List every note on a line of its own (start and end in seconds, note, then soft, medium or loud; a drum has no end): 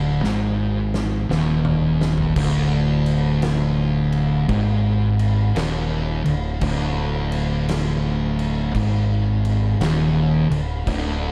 0.00 0.20 D1 loud
0.00 0.22 D2 medium
0.23 1.27 G#1 medium
0.23 1.29 G#2 loud
0.23 snare medium
0.94 snare medium
1.29 2.33 D#1 loud
1.29 2.35 D#2 loud
1.29 snare medium
1.65 mid tom medium
2.01 snare loud
2.18 floor tom medium
2.36 4.46 D1 medium
2.36 4.48 D2 medium
2.36 kick loud
2.36 crash loud
3.06 crash medium
3.42 snare loud
3.42 crash medium
4.12 crash medium
4.48 5.52 G#1 medium
4.48 5.54 G#2 loud
4.48 kick loud
4.48 crash medium
5.19 crash medium
5.55 6.22 D#1 loud
5.55 6.24 D#2 loud
5.55 snare loud
5.55 crash medium
6.25 6.60 D1 medium
6.25 6.55 D2 medium
6.25 crash medium
6.61 8.71 D1 loud
6.61 8.73 D2 loud
6.61 kick loud
6.61 crash medium
7.32 crash medium
7.69 snare loud
7.69 crash medium
8.39 crash medium
8.75 9.77 G#1 loud
8.75 9.80 G#2 loud
8.75 kick medium
8.75 crash medium
9.45 crash medium
9.80 10.47 D#1 medium
9.80 10.49 D#2 loud
9.80 snare loud
9.80 crash medium
10.50 10.84 D1 medium
10.50 10.79 D2 medium
10.50 crash medium
10.87 11.32 D1 loud
10.87 11.32 D2 loud
10.87 kick loud
10.87 crash medium